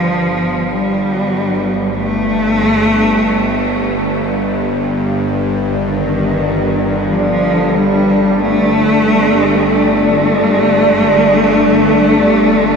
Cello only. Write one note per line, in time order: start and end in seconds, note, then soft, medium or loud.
0.00 0.73 F3 medium
0.72 1.97 G3 medium
1.98 3.86 A3 loud
5.81 7.13 D#3 medium
7.12 7.76 F3 medium
7.74 8.41 G3 medium
8.39 9.69 A3 loud
9.70 12.76 A3 medium